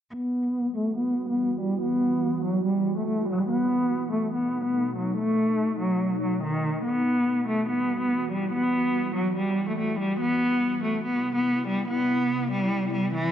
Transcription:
0.14 3.46 E3 medium
0.14 3.46 G3 medium
0.14 0.73 B3 medium
0.14 3.46 F#4 medium
0.77 0.96 A3 medium
0.98 1.27 B3 medium
1.29 1.59 B3 medium
1.61 1.80 G3 medium
1.82 2.41 B3 loud
2.45 2.64 F#3 medium
2.66 2.95 G3 medium
2.97 3.07 A3 medium
3.08 3.27 A3 medium
3.29 3.48 G3 medium
3.49 6.82 B2 medium
3.49 6.82 A3 medium
3.49 4.09 B3 loud
3.49 6.82 D#4 medium
4.12 4.32 A3 medium
4.33 4.63 B3 medium
4.65 4.94 B3 medium
4.97 5.16 F#3 medium
5.17 5.77 A3 loud
5.81 6.20 F#3 medium
6.22 6.41 F#3 medium
6.43 6.83 D#3 medium
6.85 10.17 E3 medium
6.85 10.17 G3 medium
6.85 7.44 B3 medium
6.85 10.17 F#4 medium
7.48 7.67 A3 medium
7.69 7.99 B3 medium
8.01 8.30 B3 medium
8.32 8.51 G3 medium
8.53 9.12 B3 loud
9.16 9.35 F#3 medium
9.37 9.66 G3 medium
9.69 9.78 A3 medium
9.78 9.98 A3 medium
10.00 10.19 G3 medium
10.21 13.32 C3 medium
10.21 13.32 B3 medium
10.21 10.80 B3 loud
10.21 13.32 E4 medium
10.84 11.03 A3 medium
11.05 11.34 B3 medium
11.36 11.66 B3 medium
11.68 11.87 G3 medium
11.89 12.48 B3 loud
12.52 12.91 G3 medium
12.94 13.13 G3 medium
13.14 13.32 E3 medium

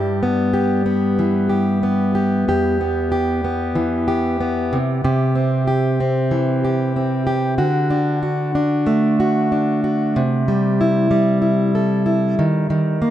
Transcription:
0.00 2.47 G2 medium
0.00 2.77 G3 soft
0.00 0.22 E4 soft
0.00 0.53 G4 medium
0.23 0.85 B3 medium
0.53 1.49 G4 medium
0.86 1.83 B3 medium
1.19 3.75 E3 medium
1.49 2.15 G4 soft
1.83 2.80 B3 medium
2.15 2.48 G4 medium
2.48 4.78 E2 medium
2.48 3.11 G4 medium
2.81 3.43 B3 medium
3.12 4.07 G4 medium
3.44 4.39 B3 medium
3.75 6.31 E3 medium
4.08 5.04 G4 medium
4.41 4.78 B3 medium
4.73 5.04 C3 medium
5.04 7.59 C3 medium
5.04 5.66 G4 medium
5.35 5.99 C4 medium
5.67 6.63 G4 medium
6.00 6.95 C4 medium
6.31 7.58 E3 medium
6.65 7.25 G4 medium
6.96 7.66 C4 medium
7.27 7.58 G4 medium
7.58 10.14 D3 medium
7.58 8.21 F#4 medium
7.90 8.54 D4 medium
8.23 9.19 F#4 medium
8.55 9.51 D4 medium
8.87 10.48 A3 medium
9.20 9.83 F#4 medium
9.52 10.22 D4 medium
9.84 10.22 F#4 medium
10.16 12.38 C3 medium
10.48 11.10 G3 medium
10.81 11.41 E4 medium
11.11 13.01 G3 medium
11.42 12.05 E4 medium
11.75 12.45 A4 medium
12.06 12.45 E4 medium
12.39 12.69 D#3 medium
12.70 13.10 D#3 medium
13.02 13.10 A#3 medium

